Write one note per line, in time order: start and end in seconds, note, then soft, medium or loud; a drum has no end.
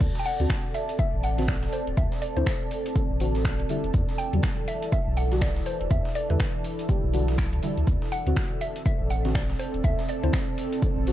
0.00 0.11 D2 medium
0.00 0.36 D3 medium
0.00 0.36 C4 medium
0.00 3.66 C4 medium
0.00 0.37 F#4 medium
0.00 7.86 A4 medium
0.00 5.62 A4 medium
0.00 7.87 D5 medium
0.00 9.80 D5 loud
0.00 7.87 A5 medium
0.00 kick loud
0.00 closed hi-hat medium
0.00 crash medium
0.00 shaker medium
0.15 snare soft
0.19 0.25 G5 medium
0.25 0.76 F#5 loud
0.25 open hi-hat loud
0.25 shaker medium
0.39 0.47 D2 medium
0.39 1.34 D3 medium
0.39 1.35 C4 medium
0.39 1.35 F#4 medium
0.39 closed hi-hat medium
0.50 finger snap loud
0.50 kick loud
0.50 snare loud
0.50 closed hi-hat medium
0.50 shaker medium
0.74 0.97 E5 loud
0.74 open hi-hat loud
0.74 shaker medium
0.89 closed hi-hat medium
0.89 closed hi-hat soft
0.99 1.24 E5 loud
0.99 kick loud
0.99 closed hi-hat medium
0.99 shaker medium
1.14 1.68 A1 loud
1.23 1.49 F#5 loud
1.23 open hi-hat loud
1.23 shaker medium
1.38 1.46 D3 medium
1.38 1.46 C4 medium
1.38 1.46 F#4 loud
1.38 snare soft
1.38 closed hi-hat medium
1.48 1.74 D5 loud
1.48 finger snap loud
1.48 kick loud
1.48 snare loud
1.48 closed hi-hat medium
1.48 shaker medium
1.63 snare soft
1.63 closed hi-hat medium
1.73 1.98 C5 medium
1.73 open hi-hat loud
1.73 shaker medium
1.87 1.94 D1 medium
1.87 closed hi-hat medium
1.97 2.07 D2 loud
1.97 2.23 E5 loud
1.97 kick loud
1.97 closed hi-hat medium
1.97 shaker medium
2.12 snare medium
2.22 2.28 D5 medium
2.22 open hi-hat loud
2.22 shaker medium
2.36 2.43 D2 medium
2.36 2.44 D3 medium
2.36 2.44 C4 medium
2.36 2.44 E4 loud
2.36 3.65 C5 medium
2.36 closed hi-hat medium
2.46 finger snap loud
2.46 kick loud
2.46 snare loud
2.46 closed hi-hat medium
2.46 shaker medium
2.71 open hi-hat loud
2.71 shaker medium
2.86 closed hi-hat soft
2.86 closed hi-hat medium
2.95 3.07 D3 medium
2.95 3.07 C4 medium
2.95 3.07 A4 medium
2.95 kick loud
2.95 closed hi-hat medium
2.95 shaker medium
3.10 3.64 A1 loud
3.20 3.67 D3 medium
3.20 3.67 C4 medium
3.20 3.67 F#4 medium
3.20 open hi-hat loud
3.20 shaker medium
3.35 snare soft
3.35 closed hi-hat medium
3.45 finger snap loud
3.45 kick loud
3.45 snare loud
3.45 closed hi-hat medium
3.45 shaker medium
3.59 closed hi-hat medium
3.69 3.81 D3 medium
3.69 7.84 E3 medium
3.69 3.81 G3 medium
3.69 3.81 E4 loud
3.69 open hi-hat loud
3.69 shaker medium
3.84 3.91 E1 medium
3.84 closed hi-hat medium
3.94 4.04 E2 medium
3.94 kick loud
3.94 closed hi-hat medium
3.94 shaker medium
4.09 snare soft
4.18 4.64 G5 loud
4.18 open hi-hat loud
4.18 shaker medium
4.33 4.40 E2 medium
4.33 5.28 D3 medium
4.33 5.28 F#3 medium
4.33 5.28 G3 medium
4.33 closed hi-hat soft
4.43 finger snap loud
4.43 kick loud
4.43 snare loud
4.43 closed hi-hat medium
4.43 shaker medium
4.68 4.91 E5 loud
4.68 open hi-hat loud
4.68 shaker medium
4.82 closed hi-hat medium
4.82 closed hi-hat soft
4.92 5.18 E5 loud
4.92 kick loud
4.92 closed hi-hat medium
4.92 shaker medium
5.07 5.61 B1 loud
5.17 5.42 F#5 loud
5.17 open hi-hat loud
5.17 shaker medium
5.31 5.39 D3 medium
5.31 5.39 G3 medium
5.31 5.40 F#4 loud
5.31 snare soft
5.31 closed hi-hat medium
5.41 5.65 D5 loud
5.41 finger snap loud
5.41 kick loud
5.41 snare loud
5.41 closed hi-hat medium
5.41 shaker medium
5.56 snare soft
5.56 closed hi-hat medium
5.66 7.85 E4 medium
5.66 5.89 C5 medium
5.66 open hi-hat loud
5.66 shaker medium
5.81 5.88 E1 medium
5.81 closed hi-hat medium
5.91 6.01 E2 medium
5.91 6.16 E5 loud
5.91 kick loud
5.91 closed hi-hat medium
5.91 shaker medium
6.05 snare medium
6.15 6.29 D5 medium
6.15 open hi-hat loud
6.15 shaker medium
6.30 6.37 E2 medium
6.30 6.38 D3 medium
6.30 6.38 G3 medium
6.30 6.38 E4 loud
6.30 7.59 B4 medium
6.30 closed hi-hat soft
6.40 finger snap loud
6.40 kick loud
6.40 snare loud
6.40 closed hi-hat medium
6.40 shaker medium
6.64 open hi-hat loud
6.64 shaker medium
6.79 closed hi-hat soft
6.89 7.00 D3 medium
6.89 7.00 G3 medium
6.89 7.01 G4 medium
6.89 kick loud
6.89 closed hi-hat medium
6.89 shaker medium
7.04 7.54 B1 loud
7.13 7.60 D3 medium
7.13 7.60 G3 medium
7.13 7.61 F#4 medium
7.13 open hi-hat loud
7.13 shaker medium
7.28 snare soft
7.28 closed hi-hat soft
7.38 finger snap loud
7.38 kick loud
7.38 snare loud
7.38 closed hi-hat medium
7.38 shaker medium
7.53 7.60 D2 loud
7.53 closed hi-hat medium
7.62 7.74 D3 medium
7.62 7.74 G3 medium
7.62 7.74 E4 loud
7.62 open hi-hat loud
7.62 shaker medium
7.77 7.84 D2 medium
7.77 closed hi-hat soft
7.87 7.97 D2 medium
7.87 11.12 C4 medium
7.87 11.12 A4 medium
7.87 kick loud
7.87 closed hi-hat medium
7.87 shaker medium
8.02 snare soft
8.09 11.12 D5 medium
8.09 8.63 F#5 loud
8.09 open hi-hat loud
8.09 shaker medium
8.26 8.33 D2 medium
8.26 9.21 D3 medium
8.26 9.22 C4 medium
8.26 9.22 F#4 medium
8.26 11.12 A5 medium
8.26 closed hi-hat soft
8.37 finger snap loud
8.37 kick loud
8.37 snare loud
8.37 closed hi-hat medium
8.37 shaker medium
8.61 8.84 E5 loud
8.61 open hi-hat loud
8.61 shaker medium
8.76 closed hi-hat soft
8.86 9.11 E5 loud
8.86 kick loud
8.86 closed hi-hat medium
8.86 shaker medium
9.00 9.54 A1 medium
9.10 9.33 F#5 loud
9.10 open hi-hat loud
9.10 shaker medium
9.25 9.33 D3 medium
9.25 9.33 C4 medium
9.25 9.33 F#4 loud
9.25 snare soft
9.25 closed hi-hat soft
9.35 9.60 D5 loud
9.35 finger snap loud
9.35 kick loud
9.35 snare loud
9.35 closed hi-hat medium
9.35 shaker medium
9.50 snare soft
9.50 closed hi-hat medium
9.59 9.71 C5 medium
9.59 open hi-hat loud
9.59 shaker medium
9.74 9.81 D1 medium
9.74 closed hi-hat soft
9.84 9.94 D2 medium
9.84 11.12 C5 loud
9.84 10.07 E5 loud
9.84 kick loud
9.84 closed hi-hat medium
9.84 shaker medium
9.99 snare medium
10.09 10.23 D5 medium
10.09 open hi-hat loud
10.09 shaker medium
10.23 10.30 D2 medium
10.23 10.31 D3 medium
10.23 10.31 C4 medium
10.23 10.31 E4 loud
10.23 11.12 C5 medium
10.23 closed hi-hat soft
10.33 finger snap loud
10.33 kick loud
10.33 snare loud
10.33 closed hi-hat medium
10.33 shaker medium
10.58 open hi-hat loud
10.58 shaker medium
10.73 closed hi-hat medium
10.73 closed hi-hat soft
10.82 10.94 D3 medium
10.82 10.94 C4 medium
10.82 10.94 A4 medium
10.82 kick loud
10.82 closed hi-hat medium
10.82 shaker medium
10.97 11.12 A1 loud
11.07 11.12 D3 medium
11.07 11.12 C4 medium
11.07 11.12 F#4 medium
11.07 open hi-hat loud
11.07 shaker medium